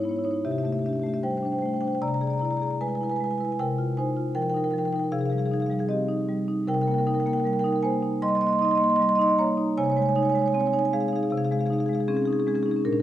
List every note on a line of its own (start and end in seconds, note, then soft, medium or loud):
0.00 0.40 G#2 medium
0.00 0.17 D#4 soft
0.00 0.11 E4 soft
0.00 0.09 C#5 soft
0.05 0.36 B3 soft
0.05 0.16 C#5 medium
0.11 0.19 E4 soft
0.16 0.26 E4 soft
0.16 0.24 C#5 soft
0.24 0.44 D#4 soft
0.24 0.33 E4 soft
0.24 0.31 C#5 medium
0.31 0.40 E4 soft
0.31 0.40 C#5 medium
0.45 1.98 C3 medium
0.45 0.52 G4 medium
0.45 0.51 E5 medium
0.51 0.60 G4 soft
0.51 0.58 E5 medium
0.58 0.67 G4 soft
0.58 0.65 E5 medium
0.63 0.95 A3 soft
0.63 0.74 G4 soft
0.63 0.73 E5 medium
0.73 0.81 G4 soft
0.73 0.79 E5 medium
0.79 0.89 G4 soft
0.79 0.86 E5 medium
0.84 1.15 D4 soft
0.84 0.93 E5 medium
0.89 0.96 G4 soft
0.93 1.02 G4 soft
0.93 1.00 E5 medium
1.00 1.35 A3 soft
1.00 1.08 G4 soft
1.00 1.06 E5 medium
1.06 1.16 G4 soft
1.06 1.14 E5 medium
1.14 1.19 G4 soft
1.14 1.20 E5 medium
1.23 1.54 G3 soft
1.23 1.30 C5 medium
1.23 1.30 G5 medium
1.30 1.38 C5 soft
1.30 1.37 G5 medium
1.37 1.46 C5 soft
1.37 1.45 G5 medium
1.43 1.74 D4 soft
1.43 1.54 C5 soft
1.43 1.52 G5 medium
1.52 1.61 C5 soft
1.52 1.59 G5 medium
1.59 1.94 A3 soft
1.59 1.69 C5 soft
1.59 1.65 G5 medium
1.65 1.76 C5 soft
1.65 1.74 G5 medium
1.74 1.84 C5 soft
1.74 1.81 G5 medium
1.81 2.01 D4 soft
1.81 1.92 C5 soft
1.81 1.88 G5 medium
1.88 1.95 G5 medium
1.92 1.98 C5 soft
1.92 1.99 G5 medium
2.02 3.54 C3 medium
2.02 2.09 D5 medium
2.02 2.08 A#5 medium
2.08 2.17 D5 soft
2.08 2.14 A#5 medium
2.14 2.23 D5 medium
2.14 2.21 A#5 medium
2.21 2.53 G#4 soft
2.21 2.30 D5 medium
2.21 2.27 A#5 medium
2.27 2.38 D5 medium
2.27 2.33 A#5 medium
2.33 2.39 A#5 medium
2.38 2.72 E4 soft
2.38 2.45 D5 soft
2.38 2.45 A#5 medium
2.45 2.52 D5 medium
2.45 2.51 A#5 medium
2.51 2.60 D5 medium
2.51 2.57 A#5 medium
2.57 2.67 D5 medium
2.57 2.63 A#5 medium
2.62 2.93 G#4 soft
2.62 2.71 A#5 medium
2.67 2.76 D5 soft
2.67 2.77 A#5 medium
2.81 3.12 G#3 soft
2.81 2.90 B4 medium
2.81 2.88 G#5 medium
2.88 2.97 B4 soft
2.88 2.95 G#5 medium
2.95 3.04 B4 soft
2.95 3.03 G#5 medium
3.01 3.31 E4 soft
3.01 3.11 B4 soft
3.01 3.10 G#5 medium
3.10 3.18 B4 medium
3.10 3.16 G#5 medium
3.16 3.26 B4 soft
3.16 3.24 G#5 medium
3.20 3.51 G#3 soft
3.20 3.31 G#5 medium
3.26 3.33 B4 medium
3.31 3.41 B4 soft
3.31 3.38 G#5 medium
3.38 3.59 E4 soft
3.38 3.49 B4 medium
3.38 3.45 G#5 medium
3.45 3.54 B4 soft
3.45 3.52 G#5 medium
3.52 3.55 G#5 medium
3.59 5.08 C3 medium
3.59 3.95 A#4 medium
3.59 3.96 G5 medium
3.78 4.08 F4 medium
3.97 4.28 D#4 soft
3.97 4.33 C5 medium
3.97 4.34 G#5 medium
4.16 4.47 F4 soft
4.35 4.66 F3 soft
4.35 4.42 A#4 medium
4.35 4.42 G5 medium
4.42 4.50 A#4 soft
4.42 4.50 G5 medium
4.50 4.56 A#4 medium
4.50 4.57 G5 medium
4.54 4.85 D#4 medium
4.54 4.64 A#4 soft
4.54 4.64 G5 medium
4.64 4.72 A#4 medium
4.64 4.71 G5 medium
4.71 5.04 F3 medium
4.71 4.79 A#4 soft
4.71 4.78 G5 medium
4.78 4.88 A#4 medium
4.78 4.85 G5 medium
4.85 4.96 A#4 soft
4.85 4.93 G5 medium
4.93 5.12 D#4 soft
4.93 5.04 A#4 medium
4.93 4.99 G5 medium
4.99 5.09 G5 medium
5.04 5.08 A#4 soft
5.12 6.64 C3 medium
5.12 5.21 G#4 medium
5.12 5.19 F5 medium
5.19 5.30 G#4 medium
5.19 5.26 F5 medium
5.26 5.33 F5 medium
5.30 5.62 G3 soft
5.30 5.38 G#4 medium
5.30 5.39 F5 medium
5.38 5.46 G#4 medium
5.38 5.46 F5 medium
5.46 5.54 G#4 medium
5.46 5.53 F5 medium
5.51 5.82 D#4 medium
5.51 5.62 G#4 medium
5.51 5.60 F5 medium
5.60 5.71 G#4 medium
5.60 5.66 F5 medium
5.66 6.01 G3 medium
5.66 5.73 F5 medium
5.71 5.80 G#4 medium
5.71 5.79 F5 medium
5.79 5.86 G#4 medium
5.79 5.86 F5 medium
5.89 6.21 C4 medium
5.89 6.26 G4 medium
5.89 6.27 D#5 medium
6.09 6.40 D#4 medium
6.29 6.60 G3 medium
6.48 6.68 D#4 medium
6.68 8.18 C3 medium
6.68 6.75 A#4 medium
6.68 6.74 G5 medium
6.74 6.83 A#4 medium
6.74 6.81 G5 medium
6.81 6.92 A#4 medium
6.81 6.88 G5 medium
6.87 7.19 A#3 medium
6.87 6.94 G5 medium
6.92 6.98 A#4 medium
6.92 6.99 G5 medium
6.98 7.07 A#4 medium
6.98 7.07 G5 medium
7.07 7.38 D#4 medium
7.07 7.15 A#4 medium
7.07 7.14 G5 medium
7.14 7.23 A#4 medium
7.14 7.20 G5 medium
7.20 7.29 A#4 soft
7.20 7.27 G5 medium
7.26 7.57 A#3 medium
7.26 7.37 A#4 medium
7.26 7.33 G5 medium
7.33 7.40 G5 medium
7.37 7.44 A#4 medium
7.37 7.47 G5 medium
7.44 7.76 G3 medium
7.44 7.53 A#4 medium
7.44 7.53 G5 medium
7.53 7.61 A#4 soft
7.53 7.59 G5 medium
7.59 7.68 A#4 medium
7.59 7.66 G5 medium
7.64 7.95 D#4 medium
7.64 7.72 G5 medium
7.68 7.75 A#4 soft
7.72 7.80 A#4 medium
7.72 7.80 G5 medium
7.83 8.14 A#3 medium
7.83 8.20 C5 medium
7.83 8.20 G#5 medium
8.03 8.33 D#4 medium
8.22 8.53 G3 medium
8.22 8.29 D#5 medium
8.22 8.28 C6 loud
8.28 8.37 D#5 medium
8.28 8.35 C6 medium
8.35 8.42 D#5 medium
8.35 8.41 C6 medium
8.41 8.73 A#3 medium
8.41 8.48 D#5 medium
8.41 8.47 C6 medium
8.47 8.55 D#5 medium
8.47 8.53 C6 medium
8.53 8.62 D#5 medium
8.53 8.59 C6 medium
8.59 8.92 D#4 medium
8.59 8.69 D#5 medium
8.59 8.65 C6 medium
8.65 8.75 D#5 medium
8.65 8.71 C6 medium
8.71 8.81 D#5 medium
8.71 8.78 C6 medium
8.78 9.11 A#3 medium
8.78 8.89 D#5 medium
8.78 8.84 C6 medium
8.84 8.90 C6 medium
8.89 8.95 D#5 medium
8.89 8.96 C6 medium
8.95 9.02 D#5 medium
8.95 9.02 C6 medium
9.00 9.31 G3 medium
9.00 9.09 D#5 medium
9.00 9.09 C6 medium
9.09 9.15 D#5 medium
9.09 9.15 C6 medium
9.15 9.50 D#4 medium
9.15 9.22 D#5 medium
9.15 9.22 C6 medium
9.22 9.29 D#5 medium
9.22 9.27 C6 medium
9.27 9.34 D#5 medium
9.27 9.34 C6 medium
9.39 9.69 A#3 medium
9.39 9.75 C#5 medium
9.39 9.75 A#5 medium
9.58 9.77 D#4 medium
9.78 11.28 C3 medium
9.78 9.85 C#5 medium
9.78 9.84 G#5 loud
9.84 9.92 C#5 medium
9.84 9.90 G#5 medium
9.90 9.98 C#5 medium
9.90 9.97 G#5 medium
9.97 10.27 G#3 medium
9.97 10.06 C#5 medium
9.97 10.02 G#5 medium
10.02 10.12 C#5 medium
10.02 10.09 G#5 medium
10.09 10.18 C#5 medium
10.09 10.15 G#5 medium
10.15 10.46 D#4 medium
10.15 10.25 C#5 medium
10.15 10.23 G#5 medium
10.23 10.32 C#5 medium
10.23 10.29 G#5 medium
10.29 10.39 C#5 medium
10.29 10.35 G#5 medium
10.35 10.66 G#3 medium
10.35 10.42 G#5 medium
10.39 10.46 C#5 medium
10.39 10.48 G#5 medium
10.46 10.53 C#5 medium
10.46 10.55 G#5 medium
10.53 10.85 C4 medium
10.53 10.60 C#5 medium
10.53 10.61 G#5 medium
10.60 10.66 C#5 medium
10.60 10.67 G#5 medium
10.66 10.73 C#5 medium
10.66 10.74 G#5 medium
10.73 11.04 D#4 medium
10.73 10.80 C#5 medium
10.73 10.79 G#5 medium
10.79 10.89 C#5 medium
10.79 10.85 G#5 medium
10.85 10.89 G#5 medium
10.93 11.24 G#3 medium
10.93 11.01 G#4 medium
10.93 11.00 F5 medium
11.00 11.08 G#4 medium
11.00 11.08 F5 medium
11.08 11.16 G#4 medium
11.08 11.16 F5 medium
11.13 11.44 D#4 medium
11.13 11.23 G#4 medium
11.13 11.23 F5 medium
11.23 11.31 G#4 medium
11.23 11.30 F5 medium
11.30 12.81 C3 medium
11.30 11.38 G#4 medium
11.30 11.38 F5 medium
11.38 11.45 G#4 medium
11.38 11.45 F5 medium
11.45 11.52 G#4 medium
11.45 11.52 F5 medium
11.51 11.82 G#3 medium
11.51 11.59 G#4 medium
11.51 11.61 F5 medium
11.59 11.66 G#4 medium
11.59 11.67 F5 medium
11.66 11.72 G#4 medium
11.66 11.73 F5 medium
11.70 12.01 D#4 medium
11.70 11.78 G#4 medium
11.70 11.80 F5 medium
11.78 11.86 G#4 medium
11.78 11.88 F5 medium
11.86 12.20 G#3 medium
11.86 11.93 G#4 medium
11.86 11.95 F5 medium
11.93 12.00 G#4 medium
11.93 12.05 F5 medium
12.00 12.05 G#4 medium
12.08 12.39 C4 medium
12.08 12.15 C#4 medium
12.08 12.17 G#4 medium
12.15 12.22 C#4 medium
12.15 12.25 G#4 medium
12.22 12.31 C#4 medium
12.22 12.33 G#4 medium
12.27 12.39 C#4 medium
12.27 12.58 D#4 medium
12.33 12.40 G#4 medium
12.39 12.47 C#4 medium
12.39 12.48 G#4 medium
12.47 12.77 G#3 medium
12.47 12.55 C#4 soft
12.47 12.55 G#4 medium
12.55 12.63 C#4 medium
12.55 12.63 G#4 medium
12.63 12.69 C#4 medium
12.63 12.85 D#4 medium
12.63 12.71 G#4 medium
12.69 12.76 C#4 medium
12.69 12.82 G#4 medium
12.76 12.81 C#4 soft
12.85 13.02 A#2 medium
12.85 12.92 D4 medium
12.85 12.93 A#4 medium
12.92 13.02 D4 soft
12.92 13.02 A#4 medium